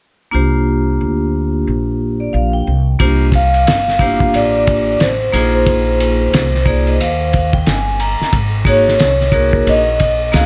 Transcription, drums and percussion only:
3.00 kick loud
3.00 ride medium
3.32 kick medium
3.32 ride medium
3.54 ride soft
3.67 snare loud
3.67 hi-hat pedal medium
3.67 ride medium
3.88 snare soft
3.99 kick medium
3.99 ride soft
4.20 kick medium
4.34 ride medium
4.67 kick medium
4.67 ride medium
5.00 snare loud
5.00 hi-hat pedal soft
5.00 ride medium
5.33 ride medium
5.67 kick medium
5.67 ride medium
6.00 ride medium
6.34 snare loud
6.34 hi-hat pedal soft
6.34 ride medium
6.55 snare soft
6.66 kick medium
6.66 ride soft
6.87 ride soft
7.01 ride medium
7.33 kick medium
7.33 ride medium
7.53 kick medium
7.66 snare loud
7.66 hi-hat pedal soft
7.66 ride medium
8.00 ride medium
8.21 snare soft
8.33 kick loud
8.33 ride medium
8.65 kick medium
8.65 ride medium
8.88 snare soft
8.99 snare loud
8.99 hi-hat pedal soft
8.99 ride medium
9.21 snare soft
9.32 kick medium
9.32 ride soft
9.53 kick medium
9.67 ride medium
10.00 kick medium
10.00 ride medium
10.33 snare loud
10.33 hi-hat pedal soft
10.33 ride medium

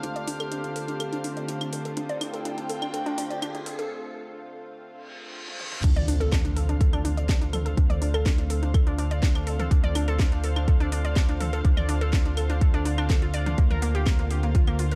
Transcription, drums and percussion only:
0.03 closed hi-hat medium
0.16 closed hi-hat soft
0.28 open hi-hat loud
0.40 closed hi-hat soft
0.40 claves soft
0.52 closed hi-hat medium
0.64 closed hi-hat soft
0.76 open hi-hat loud
0.88 closed hi-hat soft
1.00 closed hi-hat medium
1.00 claves soft
1.13 closed hi-hat soft
1.24 open hi-hat loud
1.37 closed hi-hat soft
1.48 closed hi-hat medium
1.61 closed hi-hat soft
1.61 claves medium
1.73 open hi-hat loud
1.85 closed hi-hat soft
1.97 closed hi-hat medium
2.09 closed hi-hat soft
2.21 open hi-hat loud
2.21 claves medium
2.34 closed hi-hat soft
2.45 closed hi-hat medium
2.58 closed hi-hat soft
2.69 open hi-hat loud
2.82 closed hi-hat soft
2.82 claves medium
2.94 closed hi-hat medium
3.06 closed hi-hat soft
3.18 open hi-hat loud
3.31 closed hi-hat soft
3.42 closed hi-hat medium
3.42 claves medium
3.55 closed hi-hat soft
3.66 open hi-hat loud
3.79 closed hi-hat soft
5.48 high tom medium
5.60 mid tom medium
5.72 mid tom medium
5.84 kick loud
5.84 closed hi-hat medium
5.84 crash loud
5.96 closed hi-hat soft
5.96 mid tom medium
6.08 open hi-hat loud
6.21 closed hi-hat soft
6.32 kick loud
6.32 snare loud
6.32 closed hi-hat medium
6.32 claves medium
6.45 closed hi-hat soft
6.57 open hi-hat loud
6.69 closed hi-hat soft
6.81 kick loud
6.81 closed hi-hat medium
6.93 closed hi-hat soft
6.93 claves soft
7.05 open hi-hat loud
7.17 closed hi-hat soft
7.29 kick loud
7.29 snare loud
7.29 closed hi-hat medium
7.42 closed hi-hat soft
7.53 open hi-hat loud
7.53 mid tom medium
7.53 claves medium
7.66 closed hi-hat soft
7.77 kick loud
7.77 closed hi-hat medium
7.90 closed hi-hat soft
7.90 mid tom medium
8.02 open hi-hat loud
8.14 closed hi-hat soft
8.14 claves soft
8.26 kick loud
8.26 snare loud
8.26 closed hi-hat medium
8.38 closed hi-hat soft
8.50 open hi-hat loud
8.63 closed hi-hat soft
8.74 kick loud
8.74 closed hi-hat medium
8.74 claves medium
8.87 closed hi-hat soft
8.98 open hi-hat loud
9.11 closed hi-hat soft
9.23 kick loud
9.23 snare loud
9.23 closed hi-hat medium
9.35 closed hi-hat soft
9.35 claves medium
9.47 open hi-hat loud
9.60 closed hi-hat soft
9.60 mid tom medium
9.71 kick loud
9.71 closed hi-hat medium
9.84 closed hi-hat soft
9.84 mid tom medium
9.95 open hi-hat loud
9.95 claves medium
10.08 closed hi-hat soft
10.19 kick loud
10.19 snare loud
10.19 closed hi-hat medium
10.32 closed hi-hat soft
10.44 open hi-hat loud
10.56 closed hi-hat soft
10.56 claves medium
10.68 kick loud
10.68 closed hi-hat medium
10.80 closed hi-hat soft
10.92 open hi-hat loud
11.05 closed hi-hat soft
11.16 kick loud
11.16 snare loud
11.16 closed hi-hat medium
11.16 claves medium
11.29 closed hi-hat soft
11.41 open hi-hat loud
11.41 mid tom medium
11.53 closed hi-hat soft
11.65 kick loud
11.65 closed hi-hat medium
11.77 closed hi-hat soft
11.77 mid tom medium
11.77 claves medium
11.89 open hi-hat loud
12.01 closed hi-hat soft
12.13 kick loud
12.13 snare loud
12.13 closed hi-hat medium
12.25 closed hi-hat soft
12.37 open hi-hat loud
12.37 claves medium
12.50 closed hi-hat soft
12.61 kick loud
12.61 closed hi-hat medium
12.74 closed hi-hat soft
12.85 open hi-hat loud
12.98 closed hi-hat soft
12.98 claves medium
13.10 kick loud
13.10 snare loud
13.10 closed hi-hat medium
13.22 closed hi-hat soft
13.34 open hi-hat loud
13.46 closed hi-hat soft
13.46 mid tom medium
13.58 kick loud
13.58 closed hi-hat medium
13.71 closed hi-hat soft
13.71 mid tom medium
13.82 open hi-hat loud
13.95 closed hi-hat soft
14.06 kick loud
14.06 snare loud
14.06 closed hi-hat medium
14.06 claves medium
14.19 closed hi-hat soft
14.31 open hi-hat loud
14.43 closed hi-hat soft
14.55 kick loud
14.55 closed hi-hat medium
14.67 closed hi-hat soft
14.67 claves medium
14.79 open hi-hat loud
14.91 closed hi-hat soft

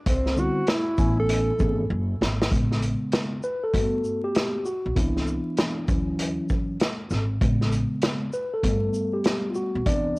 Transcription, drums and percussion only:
0.06 kick loud
0.06 closed hi-hat medium
0.26 snare soft
0.37 shaker medium
0.67 snare loud
0.67 closed hi-hat medium
0.98 kick loud
0.98 closed hi-hat medium
0.98 shaker medium
1.29 closed hi-hat medium
1.59 kick medium
1.59 shaker soft
2.22 snare medium
2.42 snare medium
2.51 kick loud
2.51 closed hi-hat medium
2.72 snare soft
2.82 closed hi-hat medium
2.82 shaker soft
3.12 snare loud
3.12 closed hi-hat medium
3.43 shaker medium
3.74 kick medium
3.74 closed hi-hat medium
4.04 shaker soft
4.35 snare loud
4.35 closed hi-hat medium
4.65 shaker medium
4.96 kick loud
4.96 closed hi-hat medium
5.17 snare soft
5.27 shaker medium
5.57 snare loud
5.57 closed hi-hat medium
5.88 kick loud
5.88 closed hi-hat medium
5.88 shaker medium
6.19 closed hi-hat medium
6.49 kick medium
6.49 shaker soft
6.80 snare loud
6.80 closed hi-hat medium
7.10 snare soft
7.10 shaker medium
7.41 kick loud
7.41 closed hi-hat medium
7.61 snare soft
7.72 closed hi-hat medium
7.72 shaker soft
8.02 snare loud
8.02 closed hi-hat medium
8.33 shaker soft
8.63 kick medium
8.63 closed hi-hat medium
8.94 shaker soft
9.24 snare loud
9.24 closed hi-hat medium
9.55 shaker soft
9.86 kick loud
9.86 closed hi-hat medium

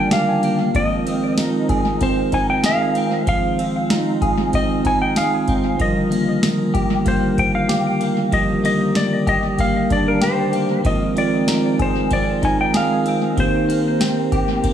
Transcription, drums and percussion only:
0.11 snare loud
0.11 ride medium
0.11 tambourine medium
0.43 ride soft
0.75 kick loud
0.75 ride medium
1.07 ride medium
1.38 snare loud
1.38 ride medium
1.38 tambourine medium
1.69 kick loud
1.69 ride soft
2.01 kick loud
2.01 ride medium
2.32 kick medium
2.32 ride soft
2.64 snare loud
2.64 ride medium
2.64 tambourine medium
2.95 ride soft
3.27 kick loud
3.27 ride medium
3.59 ride medium
3.90 snare loud
3.90 ride medium
3.90 tambourine medium
4.22 kick loud
4.22 ride soft
4.53 kick loud
4.53 ride medium
4.85 kick medium
4.85 ride soft
5.16 snare loud
5.16 ride medium
5.16 tambourine medium
5.48 kick loud
5.48 ride soft
5.80 kick loud
5.80 ride medium
6.12 ride medium
6.43 snare loud
6.43 ride medium
6.43 tambourine medium
6.74 kick loud
6.74 ride soft
7.06 kick loud
7.06 ride medium
7.38 kick medium
7.38 ride soft
7.69 snare loud
7.69 ride medium
7.69 tambourine medium
8.01 ride soft
8.32 kick loud
8.32 ride medium
8.65 ride medium
8.95 snare loud
8.95 ride medium
8.95 tambourine medium
9.27 kick loud
9.27 ride soft
9.59 kick loud
9.59 ride medium
9.90 kick loud
9.90 ride soft
10.22 snare loud
10.22 ride medium
10.22 tambourine medium
10.53 ride soft
10.85 kick loud
10.85 ride medium
11.17 ride medium
11.48 snare loud
11.48 ride medium
11.48 tambourine medium
11.79 kick loud
11.79 ride soft
12.11 kick medium
12.11 ride medium
12.43 kick loud
12.43 ride soft
12.74 snare loud
12.74 ride medium
12.74 tambourine medium
13.06 ride soft
13.37 kick loud
13.37 ride medium
13.70 ride medium
14.01 snare loud
14.01 ride medium
14.01 tambourine medium
14.32 kick loud
14.32 ride soft
14.64 kick loud
14.64 ride medium

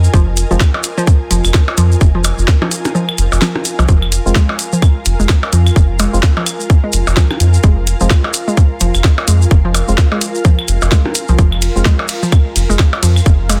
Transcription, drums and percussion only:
0.04 maracas medium
0.14 kick loud
0.14 maracas soft
0.37 closed hi-hat medium
0.37 maracas medium
0.51 maracas soft
0.60 kick loud
0.60 snare medium
0.60 claves medium
0.60 maracas soft
0.74 percussion blips medium
0.83 closed hi-hat medium
0.83 maracas medium
0.98 maracas medium
1.07 kick loud
1.07 maracas soft
1.31 closed hi-hat medium
1.31 maracas medium
1.44 claves medium
1.44 maracas medium
1.54 kick loud
1.54 snare medium
1.54 maracas soft
1.68 percussion blips medium
1.77 closed hi-hat medium
1.77 maracas medium
1.92 maracas medium
2.01 kick loud
2.01 maracas soft
2.24 closed hi-hat medium
2.24 claves medium
2.24 percussion blips soft
2.24 maracas medium
2.38 maracas soft
2.48 kick loud
2.48 snare medium
2.48 maracas soft
2.62 percussion blips medium
2.71 closed hi-hat medium
2.71 maracas loud
2.85 closed hi-hat soft
2.85 percussion blips medium
2.85 maracas medium
2.95 maracas soft
3.09 claves medium
3.18 closed hi-hat medium
3.18 maracas medium
3.32 percussion blips medium
3.32 maracas soft
3.41 snare medium
3.41 maracas soft
3.56 percussion blips medium
3.65 closed hi-hat medium
3.65 maracas medium
3.79 percussion blips medium
3.79 maracas medium
3.88 kick loud
3.88 maracas soft
4.02 claves medium
4.12 closed hi-hat medium
4.12 maracas medium
4.26 maracas medium
4.35 kick loud
4.35 snare medium
4.35 maracas soft
4.49 percussion blips medium
4.59 closed hi-hat medium
4.59 maracas medium
4.72 maracas medium
4.82 kick loud
4.82 claves medium
4.82 maracas soft
5.05 closed hi-hat medium
5.05 maracas loud
5.20 maracas medium
5.29 kick loud
5.29 snare loud
5.29 maracas soft
5.43 percussion blips medium
5.53 closed hi-hat medium
5.53 maracas loud
5.67 claves medium
5.67 maracas soft
5.76 kick loud
5.76 maracas soft
5.99 closed hi-hat loud
5.99 percussion blips medium
5.99 maracas loud
6.14 maracas medium
6.23 kick loud
6.23 snare loud
6.23 maracas soft
6.37 percussion blips medium
6.46 closed hi-hat loud
6.46 claves medium
6.46 maracas loud
6.60 maracas medium
6.70 kick loud
6.70 maracas soft
6.93 closed hi-hat medium
6.93 maracas loud
7.07 percussion blips medium
7.07 maracas medium
7.17 kick loud
7.17 snare loud
7.17 maracas soft
7.31 percussion blips medium
7.31 claves medium
7.40 closed hi-hat loud
7.40 maracas loud
7.54 maracas medium
7.63 kick loud
7.63 maracas soft
7.87 closed hi-hat loud
7.87 maracas medium
8.01 maracas medium
8.10 kick loud
8.10 snare medium
8.10 claves medium
8.10 maracas soft
8.24 percussion blips medium
8.34 closed hi-hat loud
8.34 maracas loud
8.48 maracas medium
8.57 kick loud
8.57 maracas soft
8.80 closed hi-hat medium
8.80 maracas loud
8.94 claves medium
8.94 maracas medium
9.04 kick loud
9.04 snare loud
9.04 maracas soft
9.18 percussion blips medium
9.28 closed hi-hat loud
9.28 maracas medium
9.42 maracas medium
9.51 kick loud
9.51 maracas soft
9.74 closed hi-hat loud
9.74 claves medium
9.74 percussion blips medium
9.74 maracas medium
9.88 maracas medium
9.98 kick loud
9.98 snare medium
9.98 maracas soft
10.12 percussion blips medium
10.21 closed hi-hat loud
10.21 maracas medium
10.35 maracas medium
10.45 kick loud
10.45 maracas soft
10.59 claves medium
10.68 closed hi-hat medium
10.68 maracas loud
10.82 percussion blips medium
10.82 maracas medium
10.92 kick loud
10.92 snare medium
10.92 maracas soft
11.05 percussion blips medium
11.15 closed hi-hat loud
11.15 maracas loud
11.28 maracas medium
11.39 kick loud
11.39 maracas soft
11.52 claves medium
11.62 closed hi-hat loud
11.62 ride medium
11.62 maracas medium
11.77 maracas medium
11.85 kick loud
11.85 snare medium
11.85 maracas soft
11.99 percussion blips medium
12.08 closed hi-hat medium
12.08 ride medium
12.08 maracas loud
12.23 maracas medium
12.32 kick loud
12.32 claves medium
12.32 maracas soft
12.56 closed hi-hat medium
12.56 ride medium
12.56 maracas medium
12.70 maracas medium
12.79 kick loud
12.79 snare medium
12.79 maracas soft
12.93 percussion blips medium
13.03 closed hi-hat medium
13.03 ride medium
13.03 maracas loud
13.16 claves medium
13.16 maracas soft
13.26 kick loud
13.26 maracas soft
13.49 closed hi-hat loud
13.49 ride medium
13.49 percussion blips medium
13.49 maracas medium

